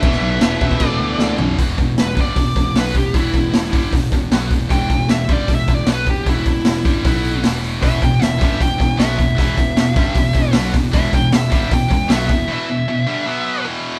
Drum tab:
CC |x---x---x-------|----------------|----------------|----------------|
HH |----------------|o-o-o-o-o-o-o-o-|o-o-o-o-o-o-o-o-|o-o-o-o-o-o-o-o-|
SD |-o--o-------o---|----o-------o---|----oo------o---|----o-------o---|
FT |--------------o-|----------------|----------------|----------------|
BD |o-----ooo-------|o-o---o-o-o---o-|o-o---o-o-o---o-|o-o---o-o-o---o-|

CC |----------------|----------------|----------------|----------------|
HH |o-o-o-o-o-o-o-o-|o-o-o-o-o-o-o-o-|o-o-o-o-o-o-o-o-|o-o-o-o-o-o-o-o-|
SD |----oo------o---|----o-------o---|----o-------o---|----oo------o---|
FT |----------------|----------------|----------------|----------------|
BD |o-o---o-o-------|o-o---o-o-o---o-|o-o---o-o-o---o-|o-o---o-o-o---o-|

CC |----------------|
HH |----------------|
SD |----------------|
FT |----------------|
BD |----------------|